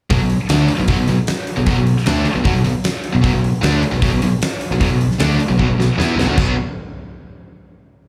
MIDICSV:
0, 0, Header, 1, 7, 480
1, 0, Start_track
1, 0, Key_signature, 2, "minor"
1, 0, Tempo, 391389
1, 135, Time_signature, 4, 2, 24, 8
1, 9912, End_track
2, 0, Start_track
2, 0, Title_t, "Distorted electric guitar"
2, 0, Program_c, 0, 30
2, 127, Note_on_c, 0, 47, 92
2, 141, Note_on_c, 0, 54, 95
2, 243, Note_off_c, 0, 47, 0
2, 247, Note_off_c, 0, 54, 0
2, 260, Note_on_c, 0, 47, 68
2, 262, Note_on_c, 0, 54, 79
2, 448, Note_off_c, 0, 47, 0
2, 449, Note_off_c, 0, 54, 0
2, 616, Note_on_c, 0, 50, 94
2, 623, Note_on_c, 0, 57, 104
2, 632, Note_on_c, 0, 62, 92
2, 846, Note_off_c, 0, 50, 0
2, 850, Note_off_c, 0, 57, 0
2, 854, Note_off_c, 0, 62, 0
2, 977, Note_on_c, 0, 47, 66
2, 980, Note_on_c, 0, 54, 62
2, 1065, Note_off_c, 0, 47, 0
2, 1075, Note_off_c, 0, 54, 0
2, 1080, Note_on_c, 0, 47, 87
2, 1090, Note_on_c, 0, 54, 107
2, 1190, Note_off_c, 0, 47, 0
2, 1191, Note_off_c, 0, 54, 0
2, 1204, Note_on_c, 0, 47, 65
2, 1206, Note_on_c, 0, 54, 66
2, 1322, Note_off_c, 0, 47, 0
2, 1328, Note_off_c, 0, 54, 0
2, 1337, Note_on_c, 0, 47, 63
2, 1346, Note_on_c, 0, 54, 67
2, 1453, Note_off_c, 0, 47, 0
2, 1458, Note_off_c, 0, 54, 0
2, 1917, Note_on_c, 0, 47, 65
2, 1925, Note_on_c, 0, 54, 67
2, 2024, Note_off_c, 0, 47, 0
2, 2038, Note_off_c, 0, 54, 0
2, 2039, Note_on_c, 0, 47, 86
2, 2052, Note_on_c, 0, 54, 89
2, 2157, Note_off_c, 0, 47, 0
2, 2164, Note_off_c, 0, 54, 0
2, 2172, Note_on_c, 0, 47, 66
2, 2184, Note_on_c, 0, 54, 75
2, 2363, Note_off_c, 0, 47, 0
2, 2369, Note_off_c, 0, 54, 0
2, 2529, Note_on_c, 0, 50, 86
2, 2539, Note_on_c, 0, 57, 102
2, 2545, Note_on_c, 0, 62, 102
2, 2762, Note_off_c, 0, 50, 0
2, 2767, Note_off_c, 0, 57, 0
2, 2770, Note_off_c, 0, 62, 0
2, 2887, Note_on_c, 0, 47, 59
2, 2893, Note_on_c, 0, 54, 75
2, 2976, Note_off_c, 0, 47, 0
2, 2984, Note_off_c, 0, 54, 0
2, 2991, Note_on_c, 0, 47, 96
2, 2999, Note_on_c, 0, 54, 95
2, 3105, Note_off_c, 0, 47, 0
2, 3108, Note_off_c, 0, 54, 0
2, 3120, Note_on_c, 0, 47, 63
2, 3123, Note_on_c, 0, 54, 74
2, 3226, Note_off_c, 0, 47, 0
2, 3235, Note_off_c, 0, 54, 0
2, 3240, Note_on_c, 0, 47, 63
2, 3249, Note_on_c, 0, 54, 67
2, 3365, Note_off_c, 0, 47, 0
2, 3370, Note_off_c, 0, 54, 0
2, 3835, Note_on_c, 0, 54, 74
2, 3837, Note_on_c, 0, 47, 72
2, 3929, Note_off_c, 0, 47, 0
2, 3941, Note_off_c, 0, 54, 0
2, 3943, Note_on_c, 0, 47, 90
2, 3955, Note_on_c, 0, 54, 113
2, 4063, Note_off_c, 0, 47, 0
2, 4064, Note_off_c, 0, 54, 0
2, 4078, Note_on_c, 0, 47, 62
2, 4079, Note_on_c, 0, 54, 78
2, 4278, Note_off_c, 0, 47, 0
2, 4278, Note_off_c, 0, 54, 0
2, 4434, Note_on_c, 0, 50, 90
2, 4445, Note_on_c, 0, 57, 97
2, 4450, Note_on_c, 0, 62, 95
2, 4677, Note_off_c, 0, 50, 0
2, 4683, Note_off_c, 0, 57, 0
2, 4685, Note_off_c, 0, 62, 0
2, 4800, Note_on_c, 0, 47, 65
2, 4809, Note_on_c, 0, 54, 72
2, 4913, Note_off_c, 0, 47, 0
2, 4928, Note_on_c, 0, 47, 85
2, 4932, Note_off_c, 0, 54, 0
2, 4945, Note_on_c, 0, 54, 98
2, 5034, Note_off_c, 0, 54, 0
2, 5035, Note_off_c, 0, 47, 0
2, 5049, Note_on_c, 0, 54, 74
2, 5050, Note_on_c, 0, 47, 69
2, 5162, Note_off_c, 0, 47, 0
2, 5168, Note_off_c, 0, 54, 0
2, 5177, Note_on_c, 0, 47, 66
2, 5182, Note_on_c, 0, 54, 70
2, 5297, Note_off_c, 0, 47, 0
2, 5299, Note_off_c, 0, 54, 0
2, 5791, Note_on_c, 0, 47, 69
2, 5793, Note_on_c, 0, 54, 73
2, 5873, Note_off_c, 0, 47, 0
2, 5886, Note_off_c, 0, 54, 0
2, 5888, Note_on_c, 0, 47, 84
2, 5900, Note_on_c, 0, 54, 100
2, 6003, Note_off_c, 0, 47, 0
2, 6003, Note_off_c, 0, 54, 0
2, 6018, Note_on_c, 0, 47, 70
2, 6018, Note_on_c, 0, 54, 68
2, 6210, Note_off_c, 0, 47, 0
2, 6210, Note_off_c, 0, 54, 0
2, 6378, Note_on_c, 0, 50, 88
2, 6382, Note_on_c, 0, 57, 85
2, 6386, Note_on_c, 0, 62, 90
2, 6612, Note_off_c, 0, 50, 0
2, 6613, Note_off_c, 0, 57, 0
2, 6616, Note_off_c, 0, 62, 0
2, 6727, Note_on_c, 0, 47, 59
2, 6728, Note_on_c, 0, 54, 69
2, 6842, Note_off_c, 0, 47, 0
2, 6854, Note_off_c, 0, 54, 0
2, 6857, Note_on_c, 0, 47, 101
2, 6873, Note_on_c, 0, 54, 87
2, 6958, Note_off_c, 0, 47, 0
2, 6964, Note_off_c, 0, 54, 0
2, 6973, Note_on_c, 0, 47, 64
2, 6978, Note_on_c, 0, 54, 70
2, 7097, Note_off_c, 0, 47, 0
2, 7099, Note_off_c, 0, 54, 0
2, 7109, Note_on_c, 0, 47, 59
2, 7112, Note_on_c, 0, 54, 71
2, 7224, Note_off_c, 0, 47, 0
2, 7226, Note_off_c, 0, 54, 0
2, 7336, Note_on_c, 0, 52, 89
2, 7341, Note_on_c, 0, 59, 99
2, 7347, Note_on_c, 0, 64, 86
2, 7571, Note_off_c, 0, 52, 0
2, 7573, Note_off_c, 0, 59, 0
2, 7576, Note_off_c, 0, 64, 0
2, 7581, Note_on_c, 0, 47, 92
2, 7586, Note_on_c, 0, 54, 86
2, 7693, Note_off_c, 0, 47, 0
2, 7695, Note_off_c, 0, 54, 0
2, 7700, Note_on_c, 0, 57, 92
2, 7704, Note_on_c, 0, 50, 85
2, 7809, Note_off_c, 0, 50, 0
2, 7813, Note_off_c, 0, 57, 0
2, 7814, Note_on_c, 0, 47, 92
2, 7830, Note_on_c, 0, 54, 98
2, 7839, Note_on_c, 0, 59, 99
2, 8009, Note_off_c, 0, 47, 0
2, 8017, Note_off_c, 0, 54, 0
2, 8021, Note_off_c, 0, 59, 0
2, 9912, End_track
3, 0, Start_track
3, 0, Title_t, "Picked electric bass"
3, 0, Program_c, 1, 34
3, 133, Note_on_c, 1, 35, 94
3, 245, Note_off_c, 1, 35, 0
3, 256, Note_on_c, 1, 35, 76
3, 477, Note_off_c, 1, 35, 0
3, 615, Note_on_c, 1, 38, 88
3, 836, Note_off_c, 1, 38, 0
3, 976, Note_on_c, 1, 35, 74
3, 1080, Note_off_c, 1, 35, 0
3, 1087, Note_on_c, 1, 35, 91
3, 1200, Note_off_c, 1, 35, 0
3, 1214, Note_on_c, 1, 35, 73
3, 1318, Note_off_c, 1, 35, 0
3, 1325, Note_on_c, 1, 35, 77
3, 1439, Note_off_c, 1, 35, 0
3, 1934, Note_on_c, 1, 35, 71
3, 2037, Note_off_c, 1, 35, 0
3, 2045, Note_on_c, 1, 35, 97
3, 2158, Note_off_c, 1, 35, 0
3, 2175, Note_on_c, 1, 35, 83
3, 2396, Note_off_c, 1, 35, 0
3, 2537, Note_on_c, 1, 38, 94
3, 2757, Note_off_c, 1, 38, 0
3, 2890, Note_on_c, 1, 35, 78
3, 2995, Note_off_c, 1, 35, 0
3, 3003, Note_on_c, 1, 35, 95
3, 3118, Note_off_c, 1, 35, 0
3, 3135, Note_on_c, 1, 35, 78
3, 3244, Note_off_c, 1, 35, 0
3, 3255, Note_on_c, 1, 35, 77
3, 3365, Note_off_c, 1, 35, 0
3, 3861, Note_on_c, 1, 35, 73
3, 3963, Note_off_c, 1, 35, 0
3, 3971, Note_on_c, 1, 35, 90
3, 4083, Note_off_c, 1, 35, 0
3, 4098, Note_on_c, 1, 35, 75
3, 4319, Note_off_c, 1, 35, 0
3, 4456, Note_on_c, 1, 38, 97
3, 4678, Note_off_c, 1, 38, 0
3, 4810, Note_on_c, 1, 35, 78
3, 4924, Note_off_c, 1, 35, 0
3, 4934, Note_on_c, 1, 35, 96
3, 5046, Note_off_c, 1, 35, 0
3, 5055, Note_on_c, 1, 35, 80
3, 5167, Note_off_c, 1, 35, 0
3, 5179, Note_on_c, 1, 35, 83
3, 5290, Note_off_c, 1, 35, 0
3, 5777, Note_on_c, 1, 35, 75
3, 5883, Note_off_c, 1, 35, 0
3, 5890, Note_on_c, 1, 35, 103
3, 5997, Note_off_c, 1, 35, 0
3, 6004, Note_on_c, 1, 35, 84
3, 6235, Note_off_c, 1, 35, 0
3, 6386, Note_on_c, 1, 38, 90
3, 6607, Note_off_c, 1, 38, 0
3, 6739, Note_on_c, 1, 35, 73
3, 6851, Note_off_c, 1, 35, 0
3, 6861, Note_on_c, 1, 35, 85
3, 6965, Note_off_c, 1, 35, 0
3, 6973, Note_on_c, 1, 35, 78
3, 7088, Note_off_c, 1, 35, 0
3, 7094, Note_on_c, 1, 35, 80
3, 7208, Note_off_c, 1, 35, 0
3, 7332, Note_on_c, 1, 40, 88
3, 7552, Note_off_c, 1, 40, 0
3, 7559, Note_on_c, 1, 35, 90
3, 7681, Note_off_c, 1, 35, 0
3, 7703, Note_on_c, 1, 38, 86
3, 7813, Note_off_c, 1, 38, 0
3, 7821, Note_on_c, 1, 35, 102
3, 8044, Note_off_c, 1, 35, 0
3, 9912, End_track
4, 0, Start_track
4, 0, Title_t, "Muted distorted electric guitar strokes"
4, 863, Note_on_c, 9, 29, 61
4, 986, Note_off_c, 9, 29, 0
4, 2768, Note_on_c, 9, 29, 63
4, 2890, Note_off_c, 9, 29, 0
4, 4702, Note_on_c, 9, 29, 62
4, 4825, Note_off_c, 9, 29, 0
4, 6620, Note_on_c, 9, 29, 62
4, 6742, Note_off_c, 9, 29, 0
4, 9912, End_track
5, 0, Start_track
5, 0, Title_t, "Muted overdriven electric guitar strokes"
5, 840, Note_on_c, 9, 29, 62
5, 963, Note_off_c, 9, 29, 0
5, 2758, Note_on_c, 9, 29, 61
5, 2880, Note_off_c, 9, 29, 0
5, 4695, Note_on_c, 9, 29, 62
5, 4817, Note_off_c, 9, 29, 0
5, 6600, Note_on_c, 9, 29, 57
5, 6722, Note_off_c, 9, 29, 0
5, 9912, End_track
6, 0, Start_track
6, 0, Title_t, "Muted picked electric bass strokes"
6, 841, Note_on_c, 9, 29, 35
6, 964, Note_off_c, 9, 29, 0
6, 2779, Note_on_c, 9, 29, 38
6, 2902, Note_off_c, 9, 29, 0
6, 4690, Note_on_c, 9, 29, 37
6, 4813, Note_off_c, 9, 29, 0
6, 6618, Note_on_c, 9, 29, 40
6, 6740, Note_off_c, 9, 29, 0
6, 9912, End_track
7, 0, Start_track
7, 0, Title_t, "Drums"
7, 125, Note_on_c, 9, 46, 82
7, 130, Note_on_c, 9, 36, 112
7, 247, Note_off_c, 9, 46, 0
7, 253, Note_off_c, 9, 36, 0
7, 364, Note_on_c, 9, 46, 55
7, 487, Note_off_c, 9, 46, 0
7, 601, Note_on_c, 9, 46, 83
7, 612, Note_on_c, 9, 38, 112
7, 723, Note_off_c, 9, 46, 0
7, 734, Note_off_c, 9, 38, 0
7, 838, Note_on_c, 9, 46, 60
7, 961, Note_off_c, 9, 46, 0
7, 1076, Note_on_c, 9, 46, 84
7, 1083, Note_on_c, 9, 36, 103
7, 1199, Note_off_c, 9, 46, 0
7, 1206, Note_off_c, 9, 36, 0
7, 1321, Note_on_c, 9, 46, 61
7, 1443, Note_off_c, 9, 46, 0
7, 1560, Note_on_c, 9, 46, 81
7, 1571, Note_on_c, 9, 38, 104
7, 1683, Note_off_c, 9, 46, 0
7, 1694, Note_off_c, 9, 38, 0
7, 1804, Note_on_c, 9, 46, 64
7, 1927, Note_off_c, 9, 46, 0
7, 2041, Note_on_c, 9, 46, 81
7, 2045, Note_on_c, 9, 36, 101
7, 2164, Note_off_c, 9, 46, 0
7, 2167, Note_off_c, 9, 36, 0
7, 2289, Note_on_c, 9, 46, 56
7, 2412, Note_off_c, 9, 46, 0
7, 2421, Note_on_c, 9, 38, 30
7, 2526, Note_on_c, 9, 46, 77
7, 2537, Note_off_c, 9, 38, 0
7, 2537, Note_on_c, 9, 38, 110
7, 2648, Note_off_c, 9, 46, 0
7, 2659, Note_off_c, 9, 38, 0
7, 2761, Note_on_c, 9, 46, 53
7, 2884, Note_off_c, 9, 46, 0
7, 3007, Note_on_c, 9, 46, 73
7, 3008, Note_on_c, 9, 36, 104
7, 3129, Note_off_c, 9, 46, 0
7, 3130, Note_off_c, 9, 36, 0
7, 3245, Note_on_c, 9, 46, 61
7, 3368, Note_off_c, 9, 46, 0
7, 3484, Note_on_c, 9, 46, 74
7, 3495, Note_on_c, 9, 38, 110
7, 3607, Note_off_c, 9, 46, 0
7, 3618, Note_off_c, 9, 38, 0
7, 3724, Note_on_c, 9, 46, 61
7, 3847, Note_off_c, 9, 46, 0
7, 3972, Note_on_c, 9, 36, 108
7, 3973, Note_on_c, 9, 46, 77
7, 4094, Note_off_c, 9, 36, 0
7, 4095, Note_off_c, 9, 46, 0
7, 4221, Note_on_c, 9, 46, 53
7, 4344, Note_off_c, 9, 46, 0
7, 4455, Note_on_c, 9, 46, 78
7, 4466, Note_on_c, 9, 38, 103
7, 4578, Note_off_c, 9, 46, 0
7, 4589, Note_off_c, 9, 38, 0
7, 4694, Note_on_c, 9, 46, 58
7, 4817, Note_off_c, 9, 46, 0
7, 4932, Note_on_c, 9, 36, 107
7, 4933, Note_on_c, 9, 46, 85
7, 5055, Note_off_c, 9, 36, 0
7, 5056, Note_off_c, 9, 46, 0
7, 5174, Note_on_c, 9, 46, 65
7, 5297, Note_off_c, 9, 46, 0
7, 5418, Note_on_c, 9, 46, 79
7, 5429, Note_on_c, 9, 38, 109
7, 5541, Note_off_c, 9, 46, 0
7, 5552, Note_off_c, 9, 38, 0
7, 5653, Note_on_c, 9, 46, 66
7, 5775, Note_off_c, 9, 46, 0
7, 5897, Note_on_c, 9, 36, 106
7, 5900, Note_on_c, 9, 46, 87
7, 6019, Note_off_c, 9, 36, 0
7, 6022, Note_off_c, 9, 46, 0
7, 6142, Note_on_c, 9, 46, 52
7, 6265, Note_off_c, 9, 46, 0
7, 6271, Note_on_c, 9, 38, 28
7, 6372, Note_on_c, 9, 46, 81
7, 6383, Note_off_c, 9, 38, 0
7, 6383, Note_on_c, 9, 38, 110
7, 6494, Note_off_c, 9, 46, 0
7, 6505, Note_off_c, 9, 38, 0
7, 6624, Note_on_c, 9, 46, 58
7, 6747, Note_off_c, 9, 46, 0
7, 6860, Note_on_c, 9, 36, 62
7, 6983, Note_off_c, 9, 36, 0
7, 7117, Note_on_c, 9, 38, 73
7, 7240, Note_off_c, 9, 38, 0
7, 7357, Note_on_c, 9, 38, 83
7, 7480, Note_off_c, 9, 38, 0
7, 7597, Note_on_c, 9, 38, 90
7, 7720, Note_off_c, 9, 38, 0
7, 7818, Note_on_c, 9, 49, 91
7, 7822, Note_on_c, 9, 36, 110
7, 7941, Note_off_c, 9, 49, 0
7, 7945, Note_off_c, 9, 36, 0
7, 9912, End_track
0, 0, End_of_file